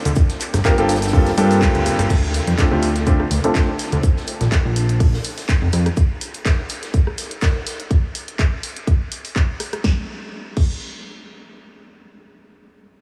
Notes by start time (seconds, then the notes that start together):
0.05 D2, closed hi-hat, shaker
0.16 kick, shaker
0.29 snare, closed hi-hat
0.40 clap, open hi-hat, shaker
0.53 G1, cross-stick, snare, closed hi-hat, shaker
0.64 G2 A#3 C4 F4 G4 A#4, kick, snare, clap, shaker
0.66 shaker
0.78 G1 G2 A#3 C4 F4 G4 A4, closed hi-hat
0.89 snare, open hi-hat, shaker
0.96 snare, shaker
1.02 snare, closed hi-hat, shaker
1.07 snare, shaker
1.13 G2 A#3 C4 F4 G4 A4, kick, open hi-hat, shaker
1.26 snare, closed hi-hat
1.37 G2 A#3 C4 F4 G4 A4, open hi-hat, shaker
1.50 snare, open hi-hat, shaker
1.62 kick, snare, clap, shaker
1.75 D2, closed hi-hat
1.86 cross-stick, open hi-hat, shaker
1.99 G1, cross-stick, closed hi-hat, shaker
2.10 D2, kick, closed hi-hat, crash, shaker
2.34 open hi-hat, shaker
2.47 F2, closed hi-hat
2.58 D3 A3 C4 D4 F4 A4, kick, snare, clap, closed hi-hat, shaker
2.71 D2 D3 A3 C4 D4 F4 G4
2.83 open hi-hat, shaker
2.95 snare, closed hi-hat
3.07 D3 A3 C4 D4 F4 C5, kick, closed hi-hat, shaker
3.20 cross-stick
3.30 D2, snare, open hi-hat, shaker
3.44 D3 A3 C4 D4 F4 A4, closed hi-hat
3.55 kick, snare, clap, closed hi-hat, shaker
3.79 snare, open hi-hat, shaker
3.92 D2, closed hi-hat
4.03 kick, closed hi-hat, shaker
4.17 snare
4.27 open hi-hat, shaker
4.41 A#1, snare, closed hi-hat
4.51 kick, snare, clap, closed hi-hat, shaker
4.65 A#1
4.76 open hi-hat, shaker
4.89 closed hi-hat
5.00 kick, closed hi-hat, open hi-hat
5.14 snare
5.24 open hi-hat, shaker
5.38 snare, open hi-hat
5.49 kick, snare, clap, closed hi-hat, shaker
5.62 F1
5.73 F2, cross-stick, open hi-hat, shaker
5.86 cross-stick, closed hi-hat
5.97 kick, closed hi-hat, shaker
6.21 open hi-hat, shaker
6.34 closed hi-hat
6.45 kick, snare, clap, closed hi-hat, shaker
6.69 open hi-hat, shaker
6.83 snare, closed hi-hat
6.94 kick, closed hi-hat, shaker
7.07 cross-stick
7.18 snare, open hi-hat, shaker
7.31 closed hi-hat
7.41 kick, snare, clap, closed hi-hat, shaker
7.67 snare, open hi-hat, shaker
7.80 closed hi-hat
7.91 kick, closed hi-hat
8.15 open hi-hat
8.28 closed hi-hat
8.39 kick, clap, closed hi-hat
8.63 open hi-hat
8.76 closed hi-hat
8.87 kick, closed hi-hat
9.12 open hi-hat
9.25 open hi-hat
9.36 kick, clap, closed hi-hat
9.60 cross-stick, open hi-hat
9.73 cross-stick, closed hi-hat
9.84 kick, snare
10.57 kick, crash